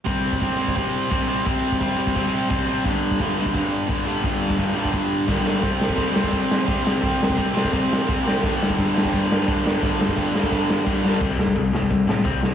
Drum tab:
CC |----------------|----------------|----------------|----------------|
HH |o---o---o---o---|o---o---o---o---|o---o---o---o---|o---o---o-------|
SD |----------------|----------------|----------------|------------o-o-|
BD |o--oo--oo---o---|o--oo--oo---o---|o--oo--oo---o---|o--oo--oo---o---|

CC |----------------|----------------|----------------|----------------|
HH |o---o---o---o---|o---o---o---o---|o---o---o---o---|o---o---o-------|
SD |--o---o---o---o-|--o---o---o---o-|--o---o---o---o-|--o---o---o-o-o-|
BD |o--oo--oo---o---|o--oo--oo---o---|o--oo--oo---o---|o--oo--oo---o---|

CC |x---------------|
HH |----o---o---o---|
SD |--o---o---o---o-|
BD |o--oo--oo---o---|